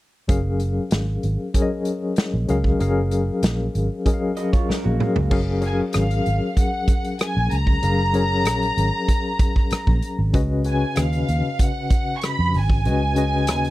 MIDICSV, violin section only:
0, 0, Header, 1, 2, 480
1, 0, Start_track
1, 0, Key_signature, 6, "major"
1, 0, Tempo, 628272
1, 224, Time_signature, 4, 2, 24, 8
1, 10469, End_track
2, 0, Start_track
2, 0, Title_t, "Violin section"
2, 0, Program_c, 0, 48
2, 4323, Note_on_c, 0, 80, 67
2, 4426, Note_off_c, 0, 80, 0
2, 4556, Note_on_c, 0, 77, 73
2, 4998, Note_off_c, 0, 77, 0
2, 5034, Note_on_c, 0, 78, 67
2, 5477, Note_off_c, 0, 78, 0
2, 5522, Note_on_c, 0, 80, 88
2, 5735, Note_off_c, 0, 80, 0
2, 5753, Note_on_c, 0, 82, 101
2, 7668, Note_off_c, 0, 82, 0
2, 8163, Note_on_c, 0, 80, 74
2, 8376, Note_off_c, 0, 80, 0
2, 8392, Note_on_c, 0, 77, 77
2, 8867, Note_off_c, 0, 77, 0
2, 8881, Note_on_c, 0, 78, 79
2, 9298, Note_off_c, 0, 78, 0
2, 9302, Note_on_c, 0, 85, 62
2, 9349, Note_off_c, 0, 85, 0
2, 9360, Note_on_c, 0, 83, 95
2, 9591, Note_off_c, 0, 83, 0
2, 9596, Note_on_c, 0, 80, 93
2, 10469, Note_off_c, 0, 80, 0
2, 10469, End_track
0, 0, End_of_file